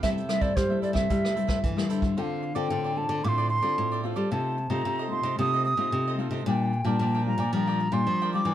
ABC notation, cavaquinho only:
X:1
M:4/4
L:1/16
Q:1/4=112
K:Cmix
V:1 name="Cavaquinho"
[EAce]2 [EAce] [EAce] z [Ace] [EAce] [Ace] [EAce]2 [EAce] [EAce] z [Ace] [EAce] [Ace] | [K:Dm] [FAcd]2 z [Acd] [FAcd] [Acd]2 [Acd] [FAcd] [Acd] z [Acd]2 [Acd] [FAcd] [Acd] | [FAc_e]2 z [Ace] [FAce] [Ace]2 [Ace] [FAce] [Ace] z [Ace]2 [Ace] [FAce] [Ace] | [DBdg]2 z [Bdg] [DBdg] [Bdg]2 [Bdg] [DBdg] [Bdg] z [Bdg]2 [Bdg] [DBdg] [Bdg] |]